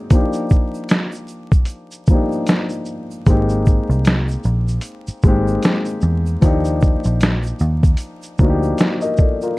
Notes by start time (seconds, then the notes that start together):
Already playing: G#3 A#3 C4 D#4 F#4 G4
0.10 F3 A#3 D4 D#4, kick, closed hi-hat, shaker
0.15 G4
0.33 shaker
0.50 kick, shaker
0.74 shaker
0.89 snare, closed hi-hat, shaker
1.12 shaker
1.15 shaker
1.27 shaker
1.29 shaker
1.52 kick, shaker
1.65 closed hi-hat, shaker
1.69 shaker
1.91 shaker
2.06 kick, shaker
2.08 F3 A#3 D4, shaker
2.12 D#4 G4
2.32 shaker
2.47 snare, closed hi-hat, shaker
2.69 shaker
2.72 shaker
2.85 shaker
3.11 shaker
3.26 G#1 G#3 A#3 C4 D#4, kick, closed hi-hat, shaker
3.31 G4
3.49 shaker
3.66 kick, shaker
3.89 C2, shaker
4.05 snare, closed hi-hat, shaker
4.28 shaker
4.31 shaker
4.43 shaker
4.45 A#1, shaker
4.68 shaker
4.81 closed hi-hat, shaker
4.85 shaker
5.07 muted picked electric bass stroke, shaker
5.22 G#1, kick, shaker
5.24 G#3 A#3 C4 D#4, shaker
5.28 G4
5.48 shaker
5.63 snare, closed hi-hat, shaker
5.85 shaker
5.88 shaker
6.01 E2, shaker
6.26 shaker
6.41 D#2 F3 A#3 D4 D#4 G4, kick, closed hi-hat, shaker
6.64 shaker
6.81 shaker
6.83 kick, shaker
7.04 shaker
7.05 A#1, shaker
7.20 snare, closed hi-hat, shaker
7.43 shaker
7.46 shaker
7.59 D#2, shaker
7.83 kick, shaker
7.97 closed hi-hat, shaker
8.00 shaker
8.22 shaker
8.38 D2 F3 A#3 D4 D#4, kick, shaker
8.43 F#4
8.49 G4
8.63 shaker
8.78 snare, closed hi-hat, shaker
9.01 D#5, shaker
9.03 A#4, shaker
9.17 A4 D5, kick, shaker
9.42 F4 A#4, shaker